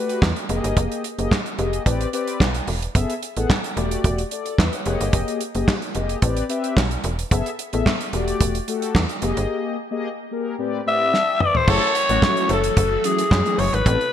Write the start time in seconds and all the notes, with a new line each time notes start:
Already playing: A3 F#4 G4 B4
0.09 closed hi-hat
0.22 E2, kick, snare, clap
0.36 closed hi-hat
0.49 F1 A#3 G4 G#4 D#5, closed hi-hat
0.64 G1, closed hi-hat
0.77 F1, kick, closed hi-hat
0.92 closed hi-hat
1.04 closed hi-hat
1.18 F#1 A#3 G4 G#4 D#5, closed hi-hat
1.31 kick, snare, clap
1.46 closed hi-hat
1.58 F1 A#3 G4 G#4 D#5, closed hi-hat
1.73 closed hi-hat
1.86 A1 C4 G4 B4 D5, kick, closed hi-hat
2.01 closed hi-hat
2.13 C4 G4 B4 D5, closed hi-hat
2.27 closed hi-hat
2.40 B1, kick, snare, clap
2.54 closed hi-hat
2.67 E1, open hi-hat
2.82 B4 D5, closed hi-hat
2.95 F#1 B3 G#4 A4 E5, kick, closed hi-hat
3.10 closed hi-hat
3.23 closed hi-hat
3.37 A1 B3 G#4 A4 F#5, closed hi-hat
3.50 kick, snare, clap
3.64 closed hi-hat
3.77 E1 A3 F#4 G4 D5, closed hi-hat
3.91 closed hi-hat
4.04 E1, kick, closed hi-hat
4.18 closed hi-hat
4.31 A4 D5, closed hi-hat
4.46 closed hi-hat
4.58 E2 B4 E5, kick, snare, clap
4.73 C#5 F#5, closed hi-hat
4.86 F1 A#3 G4 G#4 D#5, closed hi-hat
5.01 G1, closed hi-hat
5.13 F1, kick, closed hi-hat
5.28 closed hi-hat
5.41 closed hi-hat
5.55 F#1 A#3 G4 G#4 D#5, closed hi-hat
5.68 kick, snare, clap
5.82 closed hi-hat
5.95 F1 A#3 G4 G#4 D#5, closed hi-hat
6.09 closed hi-hat
6.22 A1 C4 G4 B4 D5, kick, closed hi-hat
6.37 closed hi-hat
6.49 C4 G4 B4 E5, closed hi-hat
6.64 closed hi-hat
6.77 B1, kick, snare, clap
6.91 closed hi-hat
7.04 E1, closed hi-hat
7.18 B4 D5, closed hi-hat
7.31 F#1 B3 G#4 A4 E5, kick, closed hi-hat
7.46 closed hi-hat
7.59 closed hi-hat
7.73 A1 B3 G#4 A4 E5, closed hi-hat
7.86 kick, snare, clap
8.01 closed hi-hat
8.13 E1 A3 F#4 G4 D5, closed hi-hat
8.28 closed hi-hat
8.40 E1, kick, closed hi-hat
8.55 closed hi-hat
8.68 A3 F#4 G4 A4, closed hi-hat
8.82 closed hi-hat
8.95 E2, kick, snare, clap
9.09 closed hi-hat
9.22 F1 A#3 G4 G#4 D#5, closed hi-hat
9.37 G1, closed hi-hat
9.91 A#3 G4 G#4 D#5
10.31 A#3 G4 G#4 A#4
10.58 A2 C4 G4 B4 D5
10.86 A2 C4 G4 B4 D5 E5
11.13 E5 A5, snare
11.28 D5 G5
11.40 B4 D5 E5, mid tom
11.55 G4 C5, floor tom
11.68 F#1 E3 F#3 A3 C#4 E4 F#4 G#4 A4 C#5, kick, crash
11.95 E4 A4, closed hi-hat
12.09 A1 F#3 A3 C#4 E4 F#4, closed hi-hat
12.22 kick, snare, clap
12.37 closed hi-hat
12.49 F#1 A3 A4, closed hi-hat
12.64 closed hi-hat
12.77 F#1, kick, closed hi-hat
13.04 F#3 A3 C#4 E4 G#4, closed hi-hat
13.19 closed hi-hat
13.31 F#2, kick, snare, clap
13.46 F#3 A3 C#4 E4 G#4, closed hi-hat
13.59 F#1 C#5, open hi-hat
13.73 G#1 B4, closed hi-hat
13.86 A1 C3 G3 A3 B3 C4 E4 G4 A4 B4, kick, closed hi-hat
14.01 closed hi-hat